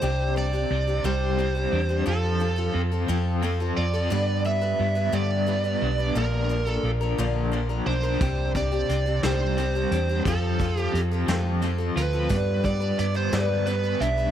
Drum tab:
HH |------|------|------|------|
SD |------|------|------|------|
BD |------|------|------|------|

HH |xxxxxx|xxxxxx|xxxxxx|
SD |---o--|---o--|---o--|
BD |oo----|oo----|oo----|